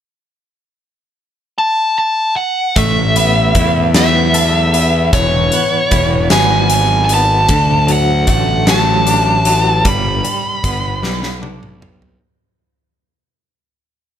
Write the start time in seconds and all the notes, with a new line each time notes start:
1.58 A5
1.98 A5
2.36 F#5
2.76 A1 A3 E5, kick, closed hi-hat
3.16 B3, closed hi-hat
3.55 E2 E4, kick, closed hi-hat
3.94 B3 E5, snare, closed hi-hat
4.34 A4, closed hi-hat
4.74 B3, closed hi-hat
5.13 E1 E3 C#5, kick, closed hi-hat
5.52 B3, closed hi-hat
5.91 E1 E4, kick, closed hi-hat
6.30 G#1 B3 G#5, snare, closed hi-hat
6.70 closed hi-hat
6.74 G#5
7.05 G#5, closed hi-hat
7.10 B3 A5
7.48 D2 D3, kick, closed hi-hat
7.87 F#3, closed hi-hat
7.92 F#5
8.27 A1 A3 F#5, kick, closed hi-hat
8.66 F#3, snare, closed hi-hat
8.70 A5
9.06 D4, closed hi-hat
9.45 F#3, closed hi-hat
9.85 G1 G3 B5, kick, closed hi-hat
10.24 G3, closed hi-hat
10.64 G1 B3, kick, closed hi-hat
11.03 B1 G3, snare
11.23 snare
11.42 D4, high tom
11.63 mid tom
11.81 G3, mid tom
12.02 floor tom